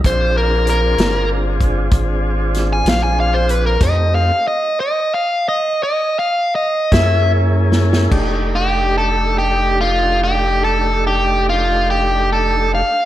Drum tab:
CC |------------------------|x-----------------------|x-----------------------|
HH |x---x-x---x-x---x-x---x-|x-----------------x-----|------------------------|
SD |------o---------o-o-----|------------------o---oo|------------------------|
BD |o---------o-o-----------|o-----------------o-----|o-----------------------|